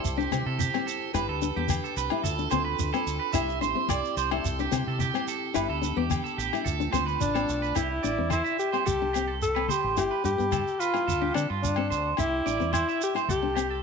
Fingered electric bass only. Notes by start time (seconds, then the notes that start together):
0.04 C2
0.32 C3
0.46 C3
1.14 G1
1.28 D2
1.56 E2
1.97 C2
2.24 D2
2.52 D2
2.79 D2
3.07 D2
3.34 C2
3.61 A1
3.89 C2
4.17 C2
4.44 C2
4.72 C3
4.87 C3
5.55 G1
5.69 D2
5.97 E2
6.38 A1
6.65 D2
6.93 D2
7.21 A1
7.49 B1
7.76 C2
8.04 A1
8.19 E2
8.87 C2
9.84 A1
9.97 G1
10.25 G2
10.40 G2
11.08 D2
11.36 D3
11.50 G2
11.91 D2
12.18 C2
12.46 A1
12.60 E2
13.28 C2